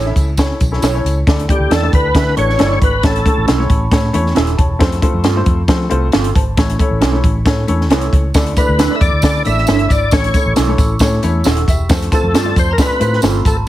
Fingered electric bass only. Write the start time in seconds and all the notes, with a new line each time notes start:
Already playing: A1
0.16 C#2
0.61 B1
0.82 B1
1.04 C#2
1.27 D2
1.60 D2
1.71 E2
1.93 D2
2.15 D3
2.37 A1
2.60 G1
2.82 G#1
3.04 A1
3.38 A1
3.48 B1
3.70 A1
3.91 A2
4.14 E2
4.37 D#1
4.59 E1
4.81 F2
5.14 F2
5.26 G2
5.46 F2
5.68 F3
5.91 C2
6.14 G1
6.35 G#1
6.57 A1
6.91 A1
7.02 B1
7.24 A1
7.46 A2
7.68 E2
7.91 C2
8.13 C#2
8.35 D2
8.69 D2
9.01 E2
9.13 D2
9.23 D3
9.46 A1
9.68 G1
9.90 G#1
10.12 A1
10.46 A1
10.57 B1
10.79 A1
11.00 A2
11.24 E2
11.46 D#1
11.68 E1
11.90 F2
12.23 F2
12.34 G2
12.56 F2
12.89 muted fingered electric bass stroke
13.01 A2
13.23 G1
13.45 G#1